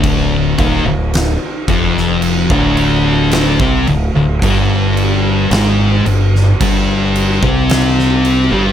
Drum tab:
CC |x-x-x-x-x-x-x-x-|x-x-x-x-x-x-x-x-|
SD |----o--o----o---|----o--o----oo--|
BD |o-o---o--o---o--|o-------o--o----|